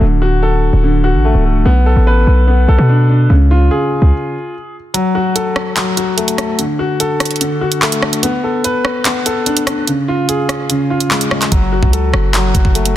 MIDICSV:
0, 0, Header, 1, 4, 480
1, 0, Start_track
1, 0, Key_signature, 3, "minor"
1, 0, Tempo, 410959
1, 14, Time_signature, 4, 2, 24, 8
1, 15145, End_track
2, 0, Start_track
2, 0, Title_t, "Grand piano"
2, 0, Program_c, 0, 0
2, 0, Control_c, 0, 64, 127
2, 18, Note_on_c, 0, 50, 90
2, 30, Control_c, 0, 64, 0
2, 229, Control_c, 0, 64, 127
2, 254, Note_on_c, 0, 66, 87
2, 497, Note_on_c, 0, 69, 88
2, 959, Note_off_c, 0, 50, 0
2, 976, Note_on_c, 0, 50, 92
2, 1195, Note_off_c, 0, 66, 0
2, 1213, Note_on_c, 0, 66, 87
2, 1457, Note_on_c, 0, 57, 83
2, 1676, Note_off_c, 0, 57, 0
2, 1693, Note_on_c, 0, 57, 74
2, 1696, Note_off_c, 0, 69, 0
2, 1933, Note_on_c, 0, 59, 100
2, 1934, Note_off_c, 0, 57, 0
2, 1934, Note_off_c, 0, 66, 0
2, 1935, Note_off_c, 0, 50, 0
2, 1951, Control_c, 0, 64, 0
2, 2146, Control_c, 0, 64, 127
2, 2175, Note_on_c, 0, 69, 86
2, 2418, Note_on_c, 0, 71, 96
2, 2872, Note_off_c, 0, 59, 0
2, 2890, Note_on_c, 0, 59, 85
2, 3119, Note_off_c, 0, 69, 0
2, 3137, Note_on_c, 0, 69, 87
2, 3372, Note_on_c, 0, 62, 84
2, 3595, Note_off_c, 0, 62, 0
2, 3613, Note_on_c, 0, 62, 76
2, 3616, Note_off_c, 0, 71, 0
2, 3852, Note_off_c, 0, 59, 0
2, 3854, Note_off_c, 0, 62, 0
2, 3856, Note_off_c, 0, 69, 0
2, 3857, Note_on_c, 0, 49, 91
2, 3871, Control_c, 0, 64, 0
2, 4087, Control_c, 0, 64, 127
2, 4099, Note_on_c, 0, 65, 86
2, 4333, Note_on_c, 0, 68, 88
2, 4829, Control_c, 0, 64, 0
2, 5056, Note_off_c, 0, 49, 0
2, 5297, Note_off_c, 0, 65, 0
2, 5534, Note_off_c, 0, 68, 0
2, 5769, Note_on_c, 0, 54, 95
2, 6014, Control_c, 0, 64, 127
2, 6014, Note_on_c, 0, 66, 89
2, 6254, Note_on_c, 0, 69, 84
2, 6716, Note_off_c, 0, 54, 0
2, 6733, Note_on_c, 0, 54, 92
2, 6957, Note_off_c, 0, 66, 0
2, 6975, Note_on_c, 0, 66, 84
2, 7207, Note_on_c, 0, 57, 82
2, 7433, Note_off_c, 0, 57, 0
2, 7451, Note_on_c, 0, 57, 82
2, 7454, Note_off_c, 0, 69, 0
2, 7693, Note_off_c, 0, 57, 0
2, 7694, Note_off_c, 0, 54, 0
2, 7695, Note_off_c, 0, 66, 0
2, 7697, Note_on_c, 0, 50, 92
2, 7708, Control_c, 0, 64, 0
2, 7888, Control_c, 0, 64, 127
2, 7932, Note_on_c, 0, 66, 91
2, 8177, Note_on_c, 0, 69, 95
2, 8639, Note_off_c, 0, 50, 0
2, 8657, Note_on_c, 0, 50, 95
2, 8874, Note_off_c, 0, 66, 0
2, 8891, Note_on_c, 0, 66, 87
2, 9135, Note_on_c, 0, 57, 85
2, 9357, Note_off_c, 0, 57, 0
2, 9374, Note_on_c, 0, 57, 74
2, 9376, Note_off_c, 0, 69, 0
2, 9612, Note_on_c, 0, 59, 102
2, 9613, Note_off_c, 0, 66, 0
2, 9614, Note_off_c, 0, 57, 0
2, 9616, Note_off_c, 0, 50, 0
2, 9629, Control_c, 0, 64, 0
2, 9829, Control_c, 0, 64, 127
2, 9856, Note_on_c, 0, 69, 86
2, 10097, Note_on_c, 0, 71, 100
2, 10552, Note_off_c, 0, 59, 0
2, 10569, Note_on_c, 0, 59, 91
2, 10798, Note_off_c, 0, 69, 0
2, 10816, Note_on_c, 0, 69, 89
2, 11051, Note_on_c, 0, 62, 86
2, 11275, Note_off_c, 0, 62, 0
2, 11293, Note_on_c, 0, 62, 78
2, 11296, Note_off_c, 0, 71, 0
2, 11532, Note_off_c, 0, 59, 0
2, 11534, Note_off_c, 0, 62, 0
2, 11535, Note_off_c, 0, 69, 0
2, 11535, Note_on_c, 0, 49, 91
2, 11548, Control_c, 0, 64, 0
2, 11728, Control_c, 0, 64, 127
2, 11777, Note_on_c, 0, 65, 91
2, 12013, Note_on_c, 0, 68, 91
2, 12476, Note_off_c, 0, 49, 0
2, 12493, Note_on_c, 0, 49, 100
2, 12717, Note_off_c, 0, 65, 0
2, 12734, Note_on_c, 0, 65, 86
2, 12973, Note_on_c, 0, 56, 82
2, 13194, Note_off_c, 0, 56, 0
2, 13211, Note_on_c, 0, 56, 74
2, 13214, Note_off_c, 0, 68, 0
2, 13450, Note_on_c, 0, 54, 94
2, 13453, Note_off_c, 0, 56, 0
2, 13454, Note_off_c, 0, 49, 0
2, 13454, Note_off_c, 0, 65, 0
2, 13471, Control_c, 0, 64, 0
2, 13669, Control_c, 0, 64, 127
2, 13694, Note_on_c, 0, 66, 89
2, 13933, Note_on_c, 0, 69, 85
2, 14395, Note_off_c, 0, 54, 0
2, 14413, Note_on_c, 0, 54, 93
2, 14635, Note_off_c, 0, 66, 0
2, 14653, Note_on_c, 0, 66, 88
2, 14887, Note_on_c, 0, 57, 83
2, 15112, Note_off_c, 0, 57, 0
2, 15134, Note_off_c, 0, 69, 0
2, 15145, Note_off_c, 0, 54, 0
2, 15145, Note_off_c, 0, 66, 0
2, 15145, End_track
3, 0, Start_track
3, 0, Title_t, "808-style bass"
3, 0, Program_c, 1, 38
3, 15, Note_on_c, 1, 26, 109
3, 821, Note_off_c, 1, 26, 0
3, 854, Note_on_c, 1, 26, 105
3, 1334, Note_on_c, 1, 33, 95
3, 1351, Note_off_c, 1, 26, 0
3, 1562, Note_off_c, 1, 33, 0
3, 1573, Note_on_c, 1, 25, 100
3, 1919, Note_off_c, 1, 25, 0
3, 1934, Note_on_c, 1, 35, 112
3, 2280, Note_off_c, 1, 35, 0
3, 2293, Note_on_c, 1, 33, 103
3, 2639, Note_off_c, 1, 33, 0
3, 2653, Note_on_c, 1, 35, 100
3, 3115, Note_off_c, 1, 35, 0
3, 3134, Note_on_c, 1, 35, 101
3, 3246, Note_off_c, 1, 35, 0
3, 3253, Note_on_c, 1, 47, 101
3, 3830, Note_off_c, 1, 47, 0
3, 3854, Note_on_c, 1, 37, 111
3, 4315, Note_off_c, 1, 37, 0
3, 4693, Note_on_c, 1, 37, 101
3, 4809, Note_off_c, 1, 37, 0
3, 13454, Note_on_c, 1, 30, 112
3, 13800, Note_off_c, 1, 30, 0
3, 13813, Note_on_c, 1, 37, 103
3, 14159, Note_off_c, 1, 37, 0
3, 14173, Note_on_c, 1, 30, 103
3, 14635, Note_off_c, 1, 30, 0
3, 14654, Note_on_c, 1, 30, 100
3, 14769, Note_off_c, 1, 30, 0
3, 14774, Note_on_c, 1, 30, 104
3, 15145, Note_off_c, 1, 30, 0
3, 15145, End_track
4, 0, Start_track
4, 0, Title_t, "Drums"
4, 5774, Note_on_c, 9, 42, 83
4, 5891, Note_off_c, 9, 42, 0
4, 6256, Note_on_c, 9, 42, 81
4, 6373, Note_off_c, 9, 42, 0
4, 6493, Note_on_c, 9, 37, 98
4, 6610, Note_off_c, 9, 37, 0
4, 6734, Note_on_c, 9, 39, 116
4, 6734, Note_on_c, 9, 42, 78
4, 6851, Note_off_c, 9, 39, 0
4, 6851, Note_off_c, 9, 42, 0
4, 6976, Note_on_c, 9, 42, 76
4, 7092, Note_off_c, 9, 42, 0
4, 7214, Note_on_c, 9, 42, 74
4, 7331, Note_off_c, 9, 42, 0
4, 7334, Note_on_c, 9, 42, 81
4, 7451, Note_off_c, 9, 42, 0
4, 7455, Note_on_c, 9, 37, 100
4, 7456, Note_on_c, 9, 42, 84
4, 7571, Note_off_c, 9, 37, 0
4, 7573, Note_off_c, 9, 42, 0
4, 7694, Note_on_c, 9, 42, 82
4, 7811, Note_off_c, 9, 42, 0
4, 8176, Note_on_c, 9, 42, 83
4, 8293, Note_off_c, 9, 42, 0
4, 8413, Note_on_c, 9, 37, 98
4, 8413, Note_on_c, 9, 42, 65
4, 8474, Note_off_c, 9, 42, 0
4, 8474, Note_on_c, 9, 42, 57
4, 8529, Note_off_c, 9, 37, 0
4, 8533, Note_off_c, 9, 42, 0
4, 8533, Note_on_c, 9, 42, 48
4, 8594, Note_off_c, 9, 42, 0
4, 8594, Note_on_c, 9, 42, 39
4, 8654, Note_off_c, 9, 42, 0
4, 8654, Note_on_c, 9, 42, 79
4, 8771, Note_off_c, 9, 42, 0
4, 9012, Note_on_c, 9, 42, 77
4, 9129, Note_off_c, 9, 42, 0
4, 9133, Note_on_c, 9, 39, 113
4, 9250, Note_off_c, 9, 39, 0
4, 9253, Note_on_c, 9, 42, 89
4, 9370, Note_off_c, 9, 42, 0
4, 9373, Note_on_c, 9, 37, 100
4, 9490, Note_off_c, 9, 37, 0
4, 9495, Note_on_c, 9, 42, 83
4, 9612, Note_off_c, 9, 42, 0
4, 9613, Note_on_c, 9, 42, 82
4, 9730, Note_off_c, 9, 42, 0
4, 10096, Note_on_c, 9, 42, 81
4, 10213, Note_off_c, 9, 42, 0
4, 10333, Note_on_c, 9, 37, 98
4, 10450, Note_off_c, 9, 37, 0
4, 10573, Note_on_c, 9, 39, 112
4, 10573, Note_on_c, 9, 42, 80
4, 10690, Note_off_c, 9, 39, 0
4, 10690, Note_off_c, 9, 42, 0
4, 10815, Note_on_c, 9, 42, 78
4, 10932, Note_off_c, 9, 42, 0
4, 11053, Note_on_c, 9, 42, 73
4, 11170, Note_off_c, 9, 42, 0
4, 11173, Note_on_c, 9, 42, 80
4, 11290, Note_off_c, 9, 42, 0
4, 11294, Note_on_c, 9, 37, 102
4, 11295, Note_on_c, 9, 42, 84
4, 11410, Note_off_c, 9, 37, 0
4, 11412, Note_off_c, 9, 42, 0
4, 11534, Note_on_c, 9, 42, 83
4, 11650, Note_off_c, 9, 42, 0
4, 12016, Note_on_c, 9, 42, 80
4, 12133, Note_off_c, 9, 42, 0
4, 12253, Note_on_c, 9, 37, 101
4, 12256, Note_on_c, 9, 42, 65
4, 12370, Note_off_c, 9, 37, 0
4, 12373, Note_off_c, 9, 42, 0
4, 12493, Note_on_c, 9, 42, 79
4, 12610, Note_off_c, 9, 42, 0
4, 12853, Note_on_c, 9, 42, 76
4, 12970, Note_off_c, 9, 42, 0
4, 12973, Note_on_c, 9, 39, 116
4, 13090, Note_off_c, 9, 39, 0
4, 13094, Note_on_c, 9, 42, 91
4, 13211, Note_off_c, 9, 42, 0
4, 13213, Note_on_c, 9, 37, 101
4, 13330, Note_off_c, 9, 37, 0
4, 13334, Note_on_c, 9, 39, 65
4, 13334, Note_on_c, 9, 42, 83
4, 13451, Note_off_c, 9, 39, 0
4, 13451, Note_off_c, 9, 42, 0
4, 13453, Note_on_c, 9, 42, 81
4, 13454, Note_on_c, 9, 36, 113
4, 13570, Note_off_c, 9, 42, 0
4, 13571, Note_off_c, 9, 36, 0
4, 13813, Note_on_c, 9, 36, 88
4, 13930, Note_off_c, 9, 36, 0
4, 13937, Note_on_c, 9, 42, 79
4, 14054, Note_off_c, 9, 42, 0
4, 14174, Note_on_c, 9, 37, 100
4, 14291, Note_off_c, 9, 37, 0
4, 14414, Note_on_c, 9, 39, 114
4, 14414, Note_on_c, 9, 42, 78
4, 14531, Note_off_c, 9, 39, 0
4, 14531, Note_off_c, 9, 42, 0
4, 14653, Note_on_c, 9, 36, 93
4, 14656, Note_on_c, 9, 42, 77
4, 14770, Note_off_c, 9, 36, 0
4, 14773, Note_off_c, 9, 42, 0
4, 14774, Note_on_c, 9, 36, 87
4, 14891, Note_off_c, 9, 36, 0
4, 14894, Note_on_c, 9, 42, 74
4, 15011, Note_off_c, 9, 42, 0
4, 15014, Note_on_c, 9, 42, 82
4, 15131, Note_off_c, 9, 42, 0
4, 15145, End_track
0, 0, End_of_file